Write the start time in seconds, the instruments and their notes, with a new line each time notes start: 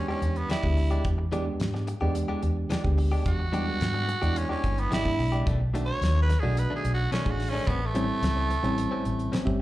Already playing: reed electric piano G#3 B3 D4 G4
0.08 clean electric guitar E3 G#3 D4 G4, tenor saxophone C#4
0.22 fingered electric bass E2, closed hi-hat
0.36 tenor saxophone B3, closed hi-hat
0.49 clean electric guitar E3 G#3 D4 G4, tenor saxophone E4, snare, closed hi-hat
0.63 fingered electric bass D2, reed electric piano G#3 B3 D4 G4, muted clean electric guitar stroke, kick
0.77 muted clean electric guitar stroke, open hi-hat
0.91 clean electric guitar G#3 D4 G4, closed hi-hat
1.04 fingered electric bass E2, kick, closed hi-hat
1.18 muted clean electric guitar stroke
1.32 clean electric guitar E3 G#3 D4 G4, reed electric piano G#3 B3 D4 G4, closed hi-hat
1.46 muted clean electric guitar stroke
1.60 fingered electric bass G#2, snare, closed hi-hat
1.74 muted clean electric guitar stroke, snare
1.87 muted clean electric guitar stroke, closed hi-hat
2.01 fingered electric bass E2, reed electric piano G#3 B3 D4 G4, clean electric guitar G#3 D4 G4
2.15 muted clean electric guitar stroke, closed hi-hat
2.28 clean electric guitar E3 G#3 D4 G4
2.42 fingered electric bass E2, muted clean electric guitar stroke, closed hi-hat
2.70 clean electric guitar E3 G#3 D4 G4, snare, closed hi-hat
2.84 fingered electric bass D2, reed electric piano G#3 B3 D4 G4, muted clean electric guitar stroke, kick, closed hi-hat
2.98 muted clean electric guitar stroke, open hi-hat
3.12 clean electric guitar G#3 D4 G4
3.26 fingered electric bass E2, tenor saxophone F#4, kick, closed hi-hat
3.39 muted clean electric guitar stroke
3.52 clean electric guitar E3 G#3 D4 G4, reed electric piano G3 G#3 B3 D4, closed hi-hat
3.67 muted clean electric guitar stroke
3.81 fingered electric bass G#2, snare, closed hi-hat
3.94 muted clean electric guitar stroke
4.08 muted clean electric guitar stroke, closed hi-hat
4.21 fingered electric bass E2, reed electric piano G#3 B3 D4 E4, clean electric guitar G#3 D4 G4, closed hi-hat
4.36 tenor saxophone C#4, muted clean electric guitar stroke, closed hi-hat
4.49 clean electric guitar E3 G#3 D4 G4, tenor saxophone C#4
4.63 fingered electric bass G1, muted clean electric guitar stroke, kick, closed hi-hat
4.78 tenor saxophone B3, closed hi-hat
4.91 fingered electric bass G#1, clean electric guitar E3 G#3 D4 G4, tenor saxophone E4, snare, closed hi-hat
5.05 reed electric piano G#3 B3 D4 E4, muted clean electric guitar stroke, kick
5.18 fingered electric bass B1, muted clean electric guitar stroke, open hi-hat
5.32 clean electric guitar G#3 D4 G4, closed hi-hat
5.46 fingered electric bass B1, clean electric guitar B2 D#3 A3 D4, kick, closed hi-hat
5.60 muted clean electric guitar stroke
5.74 clean electric guitar B2 D#3 A3 D4, reed electric piano A3 D4 D#4 F#4, closed hi-hat
5.85 tenor saxophone C#5, muted clean electric guitar stroke
6.02 fingered electric bass D#2, snare, closed hi-hat
6.15 muted clean electric guitar stroke
6.22 tenor saxophone B4
6.29 muted clean electric guitar stroke, snare, closed hi-hat
6.39 reed electric piano A3 D4 D#4 F#4, clean electric guitar D4, tenor saxophone G#4
6.44 fingered electric bass B1, clean electric guitar D#3 A3
6.57 tenor saxophone B4, muted clean electric guitar stroke, closed hi-hat
6.70 clean electric guitar B2 D#3 A3 D4
6.76 tenor saxophone G#4
6.84 fingered electric bass B1, muted clean electric guitar stroke, closed hi-hat
6.94 tenor saxophone F#4
7.11 clean electric guitar B2 D#3 A3 D4, tenor saxophone C#4, snare, closed hi-hat
7.25 fingered electric bass A1, reed electric piano A3 D4 D#4 G#4, muted clean electric guitar stroke, kick, closed hi-hat
7.30 tenor saxophone F#4
7.39 muted clean electric guitar stroke, snare, open hi-hat
7.49 tenor saxophone C#4, clean electric guitar D4
7.54 clean electric guitar D#3 A3
7.67 fingered electric bass A1, clean electric guitar A2 G3 C4 C#4, tenor saxophone B3, kick, closed hi-hat
7.81 muted clean electric guitar stroke
7.86 tenor saxophone A3
7.94 clean electric guitar A2 G3 C4 C#4, reed electric piano G3 C4 C#4 E4, closed hi-hat
8.22 fingered electric bass C#2, snare, closed hi-hat
8.36 muted clean electric guitar stroke
8.50 muted clean electric guitar stroke, closed hi-hat
8.63 fingered electric bass A1, reed electric piano G3 C4 C#4 E4, clean electric guitar G3 C4 C#4, closed hi-hat
8.78 muted clean electric guitar stroke, closed hi-hat
8.91 clean electric guitar A2 G3 C4 C#4
9.05 fingered electric bass A1, muted clean electric guitar stroke, closed hi-hat
9.19 closed hi-hat
9.32 clean electric guitar A2 G3 C4 C#4, reed electric piano C#5, snare, closed hi-hat
9.45 fingered electric bass G1, reed electric piano G3 C4 C#4 G4 E5, muted clean electric guitar stroke, kick